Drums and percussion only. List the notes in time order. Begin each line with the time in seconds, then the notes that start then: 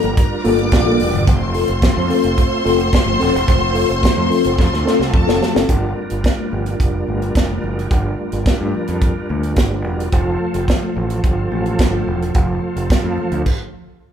0.03 closed hi-hat
0.17 kick, closed hi-hat, muted conga
0.32 muted conga
0.45 open hi-hat, high conga
0.59 closed hi-hat
0.71 kick, snare, closed hi-hat, muted conga
0.86 high conga
1.00 open hi-hat, low conga
1.15 closed hi-hat
1.27 kick, closed hi-hat, low conga
1.41 muted conga
1.54 open hi-hat
1.68 closed hi-hat
1.82 kick, snare, closed hi-hat
1.97 muted conga, high conga
2.10 open hi-hat, low conga
2.23 closed hi-hat
2.38 kick, closed hi-hat
2.51 muted conga
2.66 open hi-hat, high conga
2.80 closed hi-hat
2.93 kick, snare, closed hi-hat
3.07 muted conga, high conga
3.21 open hi-hat, low conga
3.36 closed hi-hat
3.47 kick, closed hi-hat, muted conga, low conga
3.61 muted conga
3.75 open hi-hat, high conga
3.89 closed hi-hat
4.02 kick, snare, closed hi-hat, muted conga
4.16 muted conga, high conga
4.30 open hi-hat, low conga
4.44 closed hi-hat
4.58 kick, snare, muted conga
4.73 snare, muted conga
4.86 snare, high conga
5.01 snare
5.14 kick
5.28 snare, muted conga, high conga
5.42 snare, low conga
5.56 snare
5.69 kick, closed hi-hat, muted conga, low conga
5.97 high conga
6.10 closed hi-hat
6.24 kick, snare, closed hi-hat, muted conga
6.38 muted conga, high conga
6.52 low conga
6.66 closed hi-hat
6.80 kick, closed hi-hat
6.93 muted conga
7.07 high conga
7.22 closed hi-hat
7.35 kick, snare, closed hi-hat, muted conga
7.49 muted conga, high conga
7.64 low conga
7.79 closed hi-hat
7.91 kick, closed hi-hat, muted conga, low conga
8.05 muted conga
8.19 high conga
8.32 closed hi-hat
8.46 kick, snare, closed hi-hat
8.61 muted conga, high conga
8.74 low conga
8.87 closed hi-hat
9.01 kick, closed hi-hat, muted conga
9.15 muted conga
9.29 high conga
9.43 closed hi-hat
9.56 kick, snare, closed hi-hat
9.71 muted conga, high conga
9.85 low conga
10.00 closed hi-hat
10.12 kick, closed hi-hat, muted conga, low conga
10.26 muted conga
10.40 high conga
10.54 closed hi-hat
10.68 kick, snare, closed hi-hat
10.82 muted conga, high conga
10.96 low conga
11.10 closed hi-hat
11.24 kick, closed hi-hat
11.52 high conga
11.66 closed hi-hat
11.79 kick, snare, closed hi-hat
11.94 high conga
12.07 low conga
12.22 closed hi-hat
12.34 kick, closed hi-hat, low conga
12.48 muted conga
12.62 high conga
12.76 closed hi-hat
12.90 kick, snare, closed hi-hat
13.04 muted conga, high conga
13.18 low conga
13.32 closed hi-hat
13.46 kick, crash